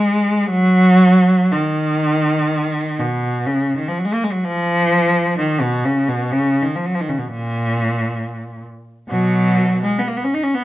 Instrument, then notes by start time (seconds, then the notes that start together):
cello
Already playing: G#3
0.50 F#3
1.52 D#3
2.99 B2
3.47 C#3
3.75 D#3
3.88 F3
3.99 F#3
4.05 G#3
4.14 A#3
4.24 G#3
4.32 F#3
4.44 F3
5.38 D#3
5.61 B2
5.85 C#3
6.09 B2
6.33 C#3
6.62 D#3
6.76 F3
6.86 F#3
6.95 F3
7.01 D#3
7.09 C#3
7.18 B2
7.28 A#2
9.09 B2 F#3
9.84 G#3
9.99 B3
10.08 A#3
10.17 B3
10.24 C#4
10.34 D#4
10.43 C#4
10.54 B3